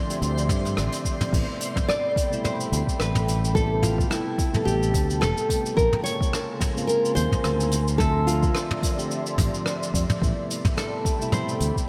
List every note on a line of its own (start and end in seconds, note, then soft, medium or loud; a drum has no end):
0.00 0.06 D3 medium
0.00 0.07 F3 medium
0.00 1.30 F3 medium
0.00 0.08 A3 medium
0.00 0.09 C4 medium
0.00 1.34 C4 medium
0.00 0.46 D4 medium
0.00 1.34 E4 loud
0.00 1.30 D5 medium
0.00 1.30 E5 medium
0.00 1.30 C6 medium
0.00 1.34 C7 medium
0.06 1.28 D3 medium
0.06 1.29 F3 medium
0.06 1.29 A3 medium
0.06 1.30 C4 medium
0.06 closed hi-hat medium
0.10 1.30 G4 loud
0.10 cabasa soft
0.22 0.49 D2 medium
0.22 closed hi-hat medium
0.22 cabasa medium
0.38 cabasa medium
0.49 0.79 G2 medium
0.49 kick loud
0.49 mid tom medium
0.49 cabasa medium
0.65 cross-stick soft
0.65 closed hi-hat medium
0.65 cabasa soft
0.77 0.87 A1 loud
0.77 cross-stick medium
0.77 closed hi-hat medium
0.77 cabasa soft
0.92 closed hi-hat medium
0.92 cabasa medium
1.05 kick medium
1.05 cabasa medium
1.21 closed hi-hat medium
1.21 mid tom medium
1.21 cabasa medium
1.31 1.42 A1 medium
1.31 2.27 C3 medium
1.31 2.28 G3 medium
1.31 2.28 A3 medium
1.31 2.29 B3 medium
1.31 5.74 A4 medium
1.31 5.74 G5 medium
1.31 3.53 B5 medium
1.31 kick loud
1.31 crash loud
1.31 cabasa medium
1.35 2.29 E4 medium
1.60 closed hi-hat medium
1.60 cabasa medium
1.76 kick loud
1.76 mid tom medium
1.76 cabasa soft
1.89 2.44 D5 loud
1.89 cross-stick loud
1.89 cabasa medium
2.16 kick loud
2.16 closed hi-hat medium
2.16 cabasa medium
2.30 3.53 B2 medium
2.30 3.51 C3 medium
2.30 3.51 G3 medium
2.30 3.52 A3 medium
2.30 cabasa soft
2.34 3.53 E4 loud
2.44 2.99 C5 loud
2.44 mid tom medium
2.44 cabasa medium
2.60 cabasa medium
2.72 2.81 D2 medium
2.72 closed hi-hat medium
2.72 cabasa medium
2.87 kick medium
2.87 cabasa soft
3.00 4.03 A1 medium
3.00 3.54 B4 medium
3.00 cross-stick medium
3.00 cabasa medium
3.15 mid tom medium
3.15 cabasa medium
3.28 closed hi-hat loud
3.28 cabasa medium
3.45 cabasa medium
3.52 4.49 C3 medium
3.52 4.50 G3 medium
3.52 4.50 A3 medium
3.52 4.51 B3 medium
3.52 3.84 A4 loud
3.52 5.76 A5 medium
3.52 kick loud
3.56 4.51 E4 loud
3.56 cabasa medium
3.82 4.10 F4 medium
3.82 closed hi-hat medium
3.82 mid tom medium
3.82 cabasa medium
3.98 kick loud
3.98 cabasa medium
4.10 4.65 E4 medium
4.10 cross-stick loud
4.10 cabasa medium
4.38 kick loud
4.38 closed hi-hat medium
4.38 cabasa medium
4.52 5.46 C3 medium
4.52 5.47 G3 medium
4.52 5.47 A3 medium
4.52 5.48 B3 medium
4.52 5.48 A4 loud
4.52 mid tom medium
4.52 cabasa soft
4.65 4.94 A1 medium
4.65 5.18 G4 loud
4.65 cabasa medium
4.83 cabasa medium
4.94 5.24 D2 medium
4.94 kick loud
4.94 closed hi-hat loud
4.94 cabasa medium
5.10 cabasa soft
5.21 5.31 E1 loud
5.21 5.76 A4 loud
5.21 cross-stick loud
5.21 mid tom medium
5.21 cabasa medium
5.38 cabasa soft
5.48 5.74 C3 medium
5.48 5.74 G3 medium
5.48 5.74 A3 medium
5.48 5.74 B3 medium
5.48 5.75 G4 loud
5.48 kick medium
5.48 closed hi-hat loud
5.48 cabasa medium
5.66 cabasa medium
5.74 5.87 A#1 medium
5.74 6.72 C3 medium
5.74 6.71 C#3 medium
5.74 6.72 G#3 medium
5.74 6.72 A#3 medium
5.74 7.70 A#4 medium
5.74 6.03 A#4 medium
5.74 7.70 G#5 medium
5.74 10.17 C6 medium
5.74 kick loud
5.78 6.73 F4 medium
5.78 cabasa medium
5.93 mid tom medium
6.04 6.87 C#5 loud
6.04 closed hi-hat loud
6.04 cabasa medium
6.21 kick loud
6.21 cabasa medium
6.33 cross-stick loud
6.33 cabasa medium
6.61 kick loud
6.61 closed hi-hat medium
6.61 mid tom medium
6.61 cabasa medium
6.74 7.69 C#3 loud
6.74 7.70 G#3 medium
6.74 7.70 A#3 medium
6.74 7.71 C4 medium
6.74 cabasa soft
6.78 7.71 F4 loud
6.87 7.14 A#4 loud
6.87 cabasa medium
7.05 cabasa medium
7.15 7.26 D#2 medium
7.15 7.98 C5 loud
7.15 closed hi-hat medium
7.15 cabasa medium
7.32 kick medium
7.32 mid tom medium
7.32 cabasa soft
7.44 8.48 D2 medium
7.44 cross-stick loud
7.44 cabasa medium
7.60 cabasa medium
7.71 10.19 F3 medium
7.71 10.19 D5 medium
7.71 10.19 E5 medium
7.71 closed hi-hat medium
7.71 cabasa loud
7.88 cabasa medium
7.97 8.93 D3 medium
7.97 8.94 F3 medium
7.97 8.94 A3 medium
7.97 8.95 C4 medium
7.97 8.28 A4 loud
7.97 kick loud
7.97 mid tom medium
7.97 cabasa medium
8.01 8.96 E5 loud
8.27 9.34 F4 medium
8.27 closed hi-hat medium
8.27 cabasa medium
8.43 kick loud
8.43 cabasa soft
8.55 cross-stick loud
8.55 cabasa medium
8.71 mid tom medium
8.83 kick loud
8.83 closed hi-hat medium
8.83 cabasa medium
8.97 9.35 D3 medium
8.97 9.36 F3 medium
8.97 9.36 A3 medium
8.97 9.36 C4 medium
8.97 9.36 G4 loud
8.97 cabasa medium
9.11 cabasa medium
9.26 cabasa medium
9.36 9.48 A1 medium
9.36 10.18 D3 medium
9.36 10.19 F3 medium
9.36 10.19 C4 medium
9.36 kick loud
9.36 closed hi-hat loud
9.36 mid tom medium
9.36 cabasa medium
9.40 10.20 G4 medium
9.54 cabasa soft
9.66 cross-stick loud
9.66 cabasa medium
9.83 cabasa medium
9.94 10.03 F2 medium
9.94 kick medium
9.94 closed hi-hat medium
9.94 cabasa loud
10.10 mid tom medium
10.10 cabasa soft
10.19 10.31 A1 loud
10.19 11.16 C3 medium
10.19 11.16 G3 medium
10.19 11.17 A3 medium
10.19 11.17 B3 medium
10.19 11.89 A4 medium
10.19 11.89 G5 medium
10.19 11.89 B5 medium
10.19 kick loud
10.19 cabasa medium
10.24 11.18 E4 medium
10.51 closed hi-hat medium
10.51 cabasa medium
10.65 kick loud
10.65 mid tom medium
10.65 cabasa soft
10.77 11.32 A4 medium
10.77 cross-stick loud
10.77 cabasa medium
11.05 kick loud
11.05 closed hi-hat medium
11.05 cabasa medium
11.18 11.89 B2 medium
11.18 11.89 C3 medium
11.18 11.89 G3 medium
11.18 11.89 A3 medium
11.18 cabasa medium
11.22 11.89 E4 loud
11.32 11.87 C5 loud
11.32 mid tom medium
11.32 cabasa medium
11.49 cabasa soft
11.60 11.70 D2 medium
11.60 closed hi-hat medium
11.60 cabasa medium
11.76 kick medium
11.76 cabasa soft